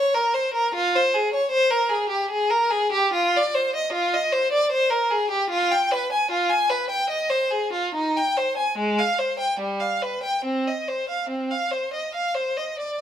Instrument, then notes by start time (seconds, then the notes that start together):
violin
Already playing: C#5
0.15 A#4
0.34 C5
0.54 A#4
0.75 F4
0.95 C5
1.14 G#4
1.34 C#5
1.51 C5
1.71 A#4
1.89 G#4
2.09 G4
2.31 G#4
2.50 A#4
2.71 G#4
2.92 G4
3.13 F4
3.37 D5
3.55 C5
3.76 D#5
3.92 F4
4.14 D#5
4.32 C5
4.52 D5
4.72 C5
4.91 A#4
5.11 G#4
5.30 G4
5.50 F4
5.72 G5
5.92 B4
6.12 G#5
6.31 F4
6.50 G#5
6.70 B4
6.90 G5
7.09 D#5
7.30 C5
7.51 G#4
7.73 F4
7.95 D#4
8.17 G5
8.37 C5
8.57 G#5
8.78 G#3
8.99 F5
9.19 C5
9.39 G5
9.60 G3
9.80 F5
10.02 B4
10.23 G5
10.45 C4
10.68 D#5
10.88 C5
11.09 F5
11.29 C4
11.51 F5
11.71 C5
11.93 D#5
12.15 F5
12.35 C5
12.57 D#5
12.79 D5